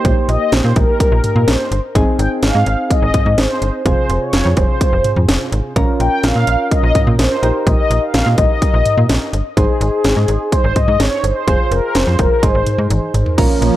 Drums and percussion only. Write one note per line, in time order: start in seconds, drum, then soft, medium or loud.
0.05 kick loud
0.05 closed hi-hat medium
0.29 closed hi-hat medium
0.52 snare loud
0.52 closed hi-hat medium
0.76 kick loud
0.76 closed hi-hat medium
1.00 kick medium
1.00 closed hi-hat medium
1.24 closed hi-hat medium
1.24 mid tom medium
1.36 mid tom medium
1.48 snare loud
1.48 closed hi-hat medium
1.72 closed hi-hat medium
1.95 kick loud
1.95 closed hi-hat medium
2.19 closed hi-hat medium
2.43 snare loud
2.43 closed hi-hat medium
2.66 closed hi-hat medium
2.90 kick medium
2.90 closed hi-hat medium
3.14 kick medium
3.14 closed hi-hat medium
3.14 mid tom medium
3.26 mid tom medium
3.38 snare loud
3.38 closed hi-hat medium
3.62 closed hi-hat medium
3.86 kick loud
3.86 closed hi-hat medium
4.10 closed hi-hat medium
4.33 snare loud
4.33 closed hi-hat medium
4.57 kick medium
4.57 closed hi-hat medium
4.81 kick medium
4.81 closed hi-hat medium
5.04 closed hi-hat medium
5.04 mid tom medium
5.16 mid tom medium
5.29 snare loud
5.29 closed hi-hat medium
5.52 closed hi-hat medium
5.76 kick loud
5.76 closed hi-hat medium
6.00 closed hi-hat medium
6.23 snare loud
6.23 closed hi-hat medium
6.47 closed hi-hat medium
6.71 kick medium
6.71 closed hi-hat medium
6.95 kick medium
6.95 closed hi-hat medium
6.95 mid tom medium
7.07 mid tom medium
7.19 snare loud
7.19 closed hi-hat medium
7.43 closed hi-hat medium
7.67 kick loud
7.67 closed hi-hat medium
7.91 closed hi-hat medium
8.14 snare loud
8.14 closed hi-hat medium
8.38 kick medium
8.38 closed hi-hat medium
8.62 kick medium
8.62 closed hi-hat medium
8.86 closed hi-hat medium
8.86 mid tom medium
8.98 mid tom medium
9.09 snare loud
9.09 closed hi-hat medium
9.33 closed hi-hat medium
9.57 kick loud
9.57 closed hi-hat medium
9.81 closed hi-hat medium
10.04 snare loud
10.04 closed hi-hat medium
10.28 closed hi-hat medium
10.52 kick medium
10.52 closed hi-hat medium
10.76 kick medium
10.76 closed hi-hat medium
10.76 mid tom medium
10.88 mid tom medium
11.00 snare loud
11.00 closed hi-hat medium
11.24 closed hi-hat medium
11.48 kick loud
11.48 closed hi-hat medium
11.72 closed hi-hat medium
11.95 snare loud
11.95 closed hi-hat medium
12.19 kick medium
12.19 closed hi-hat medium
12.43 kick medium
12.43 closed hi-hat medium
12.66 closed hi-hat medium
12.66 mid tom medium
12.78 mid tom medium
12.90 closed hi-hat medium
12.90 high tom medium
13.14 closed hi-hat medium
13.14 mid tom medium
13.26 floor tom medium
13.38 kick loud
13.38 closed hi-hat medium
13.38 crash loud
13.62 closed hi-hat medium